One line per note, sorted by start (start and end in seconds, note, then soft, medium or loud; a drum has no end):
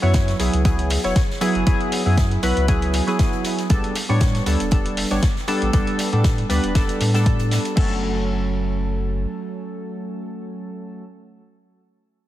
0.02 0.34 F#2 medium
0.02 0.37 F#3 medium
0.02 0.37 B3 medium
0.02 0.37 E4 medium
0.02 0.37 C#5 medium
0.14 kick loud
0.14 snare loud
0.14 closed hi-hat medium
0.28 snare soft
0.28 closed hi-hat soft
0.39 0.49 B1 loud
0.39 0.62 F#3 medium
0.39 0.62 B3 medium
0.39 0.62 E4 medium
0.39 0.62 G#4 medium
0.39 closed hi-hat medium
0.39 open hi-hat medium
0.53 0.97 C#2 medium
0.53 closed hi-hat soft
0.65 1.01 F#3 medium
0.65 1.01 B3 medium
0.65 1.01 E4 medium
0.65 1.01 G#4 medium
0.65 kick loud
0.65 closed hi-hat medium
0.79 closed hi-hat soft
0.90 open hi-hat medium
0.90 open hi-hat loud
1.04 1.12 E1 medium
1.04 1.18 F#3 medium
1.04 1.19 B3 medium
1.04 1.19 E4 medium
1.04 1.19 C#5 medium
1.04 snare soft
1.04 closed hi-hat soft
1.16 kick loud
1.16 snare loud
1.16 closed hi-hat medium
1.30 snare medium
1.41 1.64 F#3 loud
1.41 1.64 B3 medium
1.41 1.64 E4 medium
1.41 1.64 G#4 loud
1.41 closed hi-hat medium
1.41 open hi-hat medium
1.55 1.63 F#1 medium
1.55 closed hi-hat soft
1.66 1.76 F#1 medium
1.66 2.02 F#3 medium
1.66 2.03 B3 medium
1.66 2.03 E4 medium
1.66 2.03 G#4 loud
1.66 kick loud
1.66 closed hi-hat medium
1.81 closed hi-hat soft
1.92 closed hi-hat medium
1.92 open hi-hat medium
2.06 2.37 F#2 medium
2.06 2.40 F#3 medium
2.06 2.40 B3 medium
2.06 2.40 E4 medium
2.06 2.40 G#4 medium
2.18 kick medium
2.18 snare loud
2.18 closed hi-hat medium
2.31 closed hi-hat soft
2.43 2.52 B1 medium
2.43 2.65 F#3 medium
2.43 2.66 B3 medium
2.43 2.66 E4 medium
2.43 2.66 B4 medium
2.43 closed hi-hat medium
2.43 open hi-hat medium
2.57 3.01 C#2 medium
2.57 closed hi-hat soft
2.68 3.04 F#3 medium
2.68 3.04 B3 medium
2.68 3.04 E4 medium
2.68 3.05 G#4 medium
2.68 kick loud
2.68 closed hi-hat medium
2.82 closed hi-hat soft
2.93 closed hi-hat medium
2.93 open hi-hat medium
3.07 3.67 F#3 medium
3.07 3.67 B3 medium
3.07 3.67 E4 medium
3.07 3.68 G#4 medium
3.07 snare soft
3.07 closed hi-hat soft
3.19 kick medium
3.19 snare loud
3.19 closed hi-hat medium
3.33 closed hi-hat soft
3.44 closed hi-hat medium
3.44 open hi-hat medium
3.58 snare soft
3.58 closed hi-hat soft
3.70 3.80 A1 medium
3.70 3.94 G3 medium
3.70 3.95 B3 medium
3.70 3.95 D4 medium
3.70 3.95 A4 medium
3.70 kick loud
3.70 closed hi-hat medium
3.84 closed hi-hat soft
3.95 closed hi-hat medium
3.95 open hi-hat medium
4.09 4.41 A2 medium
4.09 4.43 G3 medium
4.09 4.44 B3 medium
4.09 4.44 D4 medium
4.09 4.44 C#5 medium
4.21 kick medium
4.21 snare loud
4.21 closed hi-hat medium
4.35 snare soft
4.35 closed hi-hat soft
4.46 4.56 D2 loud
4.46 4.69 G3 medium
4.46 4.69 B3 medium
4.46 4.69 D4 medium
4.46 4.69 A4 medium
4.46 closed hi-hat medium
4.46 open hi-hat medium
4.60 5.04 E1 medium
4.60 closed hi-hat medium
4.60 closed hi-hat soft
4.71 5.08 G3 medium
4.71 5.08 B3 medium
4.71 5.08 D4 medium
4.71 5.08 A4 medium
4.71 kick loud
4.71 closed hi-hat medium
4.86 closed hi-hat soft
4.97 open hi-hat medium
5.11 5.19 G1 medium
5.11 5.25 G3 medium
5.11 5.25 B3 medium
5.11 5.26 D4 medium
5.11 5.26 C#5 medium
5.11 snare soft
5.11 closed hi-hat soft
5.22 kick medium
5.22 snare loud
5.22 closed hi-hat medium
5.36 snare soft
5.48 5.71 G3 medium
5.48 5.71 B3 medium
5.48 5.71 D4 medium
5.48 5.71 A4 loud
5.48 closed hi-hat medium
5.48 open hi-hat medium
5.62 5.70 A1 medium
5.62 closed hi-hat soft
5.73 5.83 A1 medium
5.73 6.09 G3 medium
5.73 6.09 B3 medium
5.73 6.09 D4 medium
5.73 6.10 A4 medium
5.73 kick loud
5.73 closed hi-hat medium
5.87 closed hi-hat soft
5.99 closed hi-hat medium
5.99 open hi-hat medium
6.12 6.44 A2 medium
6.12 6.47 G3 medium
6.12 6.47 B3 medium
6.12 6.47 D4 medium
6.12 6.47 A4 medium
6.12 closed hi-hat soft
6.24 kick medium
6.24 snare loud
6.24 closed hi-hat medium
6.38 closed hi-hat soft
6.49 6.59 D2 medium
6.49 6.72 G3 medium
6.49 6.72 B3 medium
6.49 6.72 D4 medium
6.49 6.73 B4 medium
6.49 closed hi-hat medium
6.49 open hi-hat medium
6.64 7.00 E1 medium
6.64 closed hi-hat soft
6.75 7.11 G3 medium
6.75 7.11 B3 medium
6.75 7.11 D4 medium
6.75 7.11 A4 medium
6.75 kick loud
6.75 snare loud
6.75 closed hi-hat medium
6.89 closed hi-hat soft
6.89 closed hi-hat medium
7.01 7.58 A2 loud
7.01 closed hi-hat medium
7.01 open hi-hat medium
7.14 7.74 G3 medium
7.14 7.74 B3 medium
7.14 7.74 D4 medium
7.14 7.74 A4 medium
7.14 snare medium
7.14 closed hi-hat soft
7.14 closed hi-hat medium
7.26 kick medium
7.26 closed hi-hat soft
7.26 closed hi-hat medium
7.39 closed hi-hat medium
7.39 closed hi-hat soft
7.51 snare loud
7.51 closed hi-hat medium
7.51 open hi-hat medium
7.65 closed hi-hat soft
7.76 9.25 F#1 medium
7.76 11.02 F#3 medium
7.76 11.03 A3 medium
7.76 11.04 C#4 medium
7.76 11.04 A4 medium
7.76 kick loud
7.76 crash medium